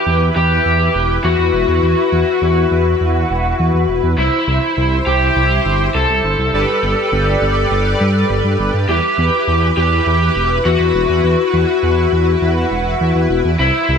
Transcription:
Already playing: E4 G4 B4
0.07 E2
0.36 E2 G4
0.65 E2
0.95 E1
1.24 E2 F#4
1.39 E2
1.53 E1
1.68 E2
1.83 E2
2.12 E2
2.42 E2
2.71 E2
3.01 E2
3.30 E1
3.59 E2
3.74 E2
3.89 E1
4.03 E2
4.18 C2 E4 C5
4.48 C2
4.77 C2
5.06 C2 G4
5.36 C2
5.65 G1
5.95 C2 A4
6.09 C2
6.24 G1
6.39 C2
6.53 G1 G3 G4 B4 D5
6.83 G1
7.12 G1
7.42 G1
7.71 G1
8.01 G2
8.30 G1
8.45 G2
8.59 G1
8.74 G2
8.89 E2 E4 G4
9.18 E2
9.47 E2
9.77 E2 G4
10.06 E2
10.36 E1
10.65 E2 F#4
10.80 E2
10.95 E1
11.09 E2
11.24 E2
11.53 E2
11.83 E2
12.12 E2
12.42 E2
12.71 E1
13.01 E2
13.15 E2
13.30 E1
13.45 E2
13.59 C2 E4 C5
13.89 C2

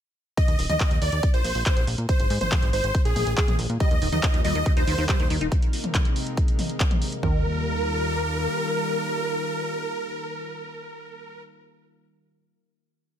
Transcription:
0.37 D#5, kick, closed hi-hat
0.48 D#2, closed hi-hat
0.59 D#1, open hi-hat
0.70 D#2 D#5, closed hi-hat, mid tom
0.80 kick, clap, closed hi-hat
0.91 D#2, closed hi-hat
1.02 D#2 D5, open hi-hat
1.12 D#2, closed hi-hat
1.23 kick, closed hi-hat
1.34 A#1 C5, closed hi-hat
1.45 A#1, open hi-hat
1.55 A#1, open hi-hat
1.66 C5, kick, clap, closed hi-hat
1.77 A#1, closed hi-hat
1.87 A#1, open hi-hat
1.98 A#2, closed hi-hat
2.09 C5, kick, closed hi-hat
2.20 G#1, closed hi-hat
2.30 G#2, open hi-hat
2.41 G#1 C5, closed hi-hat, mid tom
2.52 kick, clap, closed hi-hat, mid tom
2.62 G#1, closed hi-hat
2.73 G#1 C5, open hi-hat
2.84 G#1, closed hi-hat
2.95 kick, closed hi-hat
3.05 A#1 G#4, closed hi-hat
3.16 A#1, open hi-hat, mid tom
3.27 A#1, closed hi-hat
3.37 G#4, kick, clap, closed hi-hat
3.48 A#1, closed hi-hat, mid tom
3.59 A#1, open hi-hat
3.70 A#2, closed hi-hat
3.80 D#3 G3 A#3 F4 A#4 D#5, kick, closed hi-hat
3.91 D#2 D#3, closed hi-hat
4.02 D#1 D#3, open hi-hat
4.12 D#2 D#4 D#5, closed hi-hat, mid tom
4.23 D#3, kick, clap, closed hi-hat
4.34 D#2 D#3, closed hi-hat
4.44 D#2 G3 D#5, open hi-hat
4.55 D#2 D#3, closed hi-hat
4.66 D#3, kick, closed hi-hat
4.77 D#2 D#4 C5, closed hi-hat
4.87 D#2 D#3, open hi-hat
4.98 D#2 D#3, open hi-hat
5.09 G3 C5, kick, clap, closed hi-hat
5.20 D#2 D#3, closed hi-hat
5.30 D#2 D#3, open hi-hat
5.41 D#1 D#4, closed hi-hat
5.52 C3 G#3 D#4, kick, closed hi-hat
5.62 closed hi-hat
5.73 open hi-hat
5.84 closed hi-hat, mid tom
5.95 kick, clap, closed hi-hat, mid tom
6.05 closed hi-hat
6.16 open hi-hat
6.27 closed hi-hat
6.37 kick, closed hi-hat
6.48 closed hi-hat
6.59 open hi-hat, mid tom
6.70 closed hi-hat
6.80 kick, clap, closed hi-hat
6.91 closed hi-hat, mid tom
7.02 open hi-hat
7.12 closed hi-hat
7.23 D#2 D#3 G3 A#3 F4 A#4, kick, floor tom

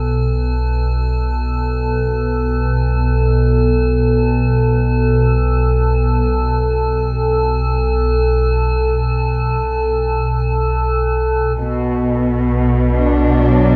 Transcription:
Already playing: B1 B2 A4
11.58 B1 B2 A4
12.93 D4
13.37 F#3

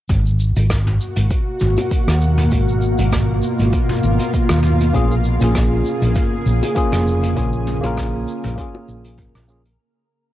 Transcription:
0.09 G#1 B2 A#3 F#4, kick, closed hi-hat, mid tom, shaker
0.26 shaker
0.40 shaker
0.56 G#1, closed hi-hat, shaker
0.70 kick, cross-stick, closed hi-hat, shaker
0.87 mid tom
1.01 shaker
1.16 G#1, closed hi-hat, shaker
1.30 kick, closed hi-hat, shaker
1.60 G#1, mid tom, shaker
1.77 closed hi-hat, high bongo, shaker
1.91 kick, closed hi-hat, shaker
2.08 D#2, cross-stick, shaker
2.21 shaker
2.37 closed hi-hat, mid tom, shaker
2.51 G#1 F4, kick, closed hi-hat, shaker
2.68 shaker
2.82 shaker
2.99 G#1, closed hi-hat, high bongo, shaker
3.12 kick, cross-stick, closed hi-hat, mid tom, shaker
3.43 shaker
3.59 G#1, closed hi-hat, shaker
3.73 kick, closed hi-hat, shaker
3.89 mid tom
4.03 G#1, shaker
4.19 closed hi-hat, shaker
4.33 kick, closed hi-hat, shaker
4.49 D#2, cross-stick, shaker
4.63 mid tom, shaker
4.81 closed hi-hat, shaker
4.93 A#1 C#3 A#3 C#4 F4 G#4, kick, closed hi-hat, shaker
5.11 shaker
5.25 shaker
5.39 A#1 A#3 C#4 F4, closed hi-hat, mid tom, shaker
5.44 G#4
5.55 kick, cross-stick, closed hi-hat, shaker
5.86 shaker
6.02 A#1, closed hi-hat, shaker
6.15 kick, closed hi-hat, mid tom, shaker
6.46 A#1, shaker
6.63 closed hi-hat, high bongo, shaker
6.75 A#3 C#4 F4 G#4, kick, closed hi-hat, shaker
6.92 F1, cross-stick, mid tom, shaker
7.07 shaker
7.23 closed hi-hat, shaker
7.35 A#1 A#3 C#4 F4 G#4 A#4, kick, closed hi-hat, shaker
7.53 shaker
7.67 mid tom, shaker
7.81 A#1 A#3 C#4 F4, closed hi-hat, high bongo, shaker
7.86 A#4
7.97 kick, cross-stick, closed hi-hat, shaker
8.28 shaker
8.44 A#1, closed hi-hat, mid tom, shaker
8.56 A#3 C#4 F4, kick, closed hi-hat, shaker
8.61 G#4
8.75 high bongo
8.89 A#1, shaker
9.04 closed hi-hat, shaker
9.18 kick, closed hi-hat, mid tom, shaker
9.35 A#1, cross-stick, shaker
9.48 A#3 C#4 F4 G#4, shaker
9.65 closed hi-hat, shaker

